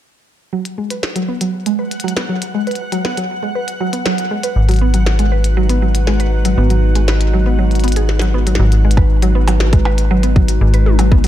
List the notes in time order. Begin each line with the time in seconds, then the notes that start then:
0.53 F#3 F#5
0.65 closed hi-hat
0.78 G#3
0.90 B4, closed hi-hat
1.03 snare
1.16 F#3, closed hi-hat
1.28 B3
1.41 F#3, closed hi-hat
1.66 G#3, closed hi-hat
1.79 B4
1.91 closed hi-hat
2.00 closed hi-hat
2.04 F#3
2.08 closed hi-hat
2.17 B3, snare, closed hi-hat
2.29 F#3
2.42 closed hi-hat
2.54 G#3
2.67 B4, closed hi-hat
2.71 closed hi-hat
2.75 closed hi-hat
2.92 F#3, closed hi-hat
3.05 B3, snare
3.17 F#3, closed hi-hat
3.43 G#3
3.55 B4
3.68 closed hi-hat
3.81 F#3
3.93 B3, closed hi-hat
4.06 F#3, snare
4.18 closed hi-hat
4.31 G#3
4.43 B4, closed hi-hat
4.56 G#1 G#3 D#4 F#4 B4
4.69 F#3, closed hi-hat
4.71 closed hi-hat
4.74 closed hi-hat
4.76 closed hi-hat
4.79 B3, closed hi-hat
4.94 F#3, closed hi-hat
5.06 snare
5.19 G#3, closed hi-hat
5.32 B4
5.44 closed hi-hat
5.57 F#3
5.69 B3, closed hi-hat
5.82 F#3
5.95 closed hi-hat
6.07 G#3, snare
6.20 B4, closed hi-hat
6.45 F#3, closed hi-hat
6.58 G#1 B3
6.70 F#3, closed hi-hat
6.95 G#3, closed hi-hat
7.08 B4, snare
7.21 closed hi-hat
7.33 F#3
7.46 B3
7.59 F#3
7.71 closed hi-hat
7.75 closed hi-hat
7.80 closed hi-hat
7.84 B3, closed hi-hat
7.88 closed hi-hat
7.92 closed hi-hat
7.96 G#4, closed hi-hat
8.09 snare
8.19 F#3, snare, closed hi-hat
8.34 B3
8.47 F#3, closed hi-hat
8.55 snare
8.59 G#1 F#3 G#3 D#4 F#4 B4
8.72 closed hi-hat
8.85 G#3
8.91 closed hi-hat
8.97 B4, kick, percussion blips
9.22 F#3, closed hi-hat
9.35 B3
9.48 F#3, closed hi-hat, percussion blips
9.60 snare
9.73 G#3, kick, closed hi-hat
9.85 B4, percussion blips
9.98 closed hi-hat
10.11 F#3
10.23 B3, closed hi-hat
10.36 F#3, kick
10.48 closed hi-hat
10.61 G#1 G#3
10.74 B4, closed hi-hat
10.86 high tom
10.99 F#3, closed hi-hat, percussion blips
11.12 B3, kick
11.24 F#3, closed hi-hat